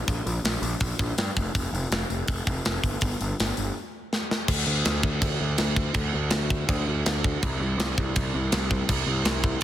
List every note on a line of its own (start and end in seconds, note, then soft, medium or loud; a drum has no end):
0.08 0.20 A#1 medium
0.08 kick loud
0.08 open hi-hat medium
0.26 0.38 A#1 medium
0.26 open hi-hat medium
0.44 0.56 A#1 medium
0.44 snare loud
0.44 open hi-hat medium
0.62 0.74 A#1 loud
0.62 open hi-hat medium
0.80 0.93 A#1 medium
0.80 kick loud
0.80 open hi-hat medium
0.99 1.11 A#1 medium
0.99 kick medium
0.99 open hi-hat medium
1.18 1.30 G2 medium
1.18 snare loud
1.18 open hi-hat medium
1.37 1.48 F1 medium
1.37 kick medium
1.37 open hi-hat soft
1.55 1.66 F1 medium
1.55 kick loud
1.55 open hi-hat medium
1.72 1.84 F1 loud
1.72 open hi-hat medium
1.91 2.03 F1 medium
1.91 snare loud
1.91 open hi-hat medium
2.10 2.22 F1 medium
2.10 open hi-hat medium
2.28 2.40 F1 medium
2.28 kick loud
2.28 open hi-hat medium
2.47 2.58 F1 medium
2.47 kick medium
2.47 open hi-hat medium
2.65 2.78 F1 medium
2.65 snare loud
2.65 open hi-hat medium
2.84 2.95 G1 medium
2.84 kick medium
2.84 open hi-hat medium
3.01 3.14 G1 medium
3.01 kick medium
3.01 open hi-hat medium
3.21 3.32 G1 medium
3.21 open hi-hat medium
3.40 3.51 G1 medium
3.40 snare loud
3.40 open hi-hat medium
3.57 3.69 G1 medium
3.57 open hi-hat medium
4.13 snare medium
4.31 snare medium
4.48 4.64 D2 medium
4.48 kick loud
4.48 crash loud
4.48 crash medium
4.67 4.82 D2 medium
4.85 5.01 D2 medium
4.85 snare loud
4.85 crash medium
5.03 5.19 D2 loud
5.03 kick medium
5.22 5.37 D2 medium
5.22 kick loud
5.22 crash medium
5.41 5.56 D2 medium
5.58 5.89 D2 loud
5.58 snare loud
5.58 crash medium
5.76 kick medium
5.94 6.10 D2 medium
5.94 kick loud
5.94 crash medium
6.14 6.29 D2 loud
6.30 6.63 D2 medium
6.30 snare loud
6.30 crash medium
6.50 kick medium
6.68 6.84 D2 loud
6.68 kick loud
6.68 crash medium
6.88 7.03 D2 loud
7.06 7.36 D2 medium
7.06 snare loud
7.06 crash medium
7.24 kick medium
7.43 7.58 C2 medium
7.43 kick loud
7.43 crash medium
7.60 7.75 C2 loud
7.78 7.93 C2 medium
7.78 snare loud
7.78 crash medium
7.98 8.13 C2 medium
7.98 kick medium
8.16 8.31 C2 medium
8.16 kick loud
8.16 crash medium
8.35 8.49 C2 medium
8.52 8.83 C2 medium
8.52 snare loud
8.52 crash medium
8.71 kick medium
8.89 9.04 C2 loud
8.89 kick loud
8.89 crash medium
9.06 9.22 C2 loud
9.25 9.55 C2 medium
9.25 snare loud
9.25 crash medium
9.44 kick medium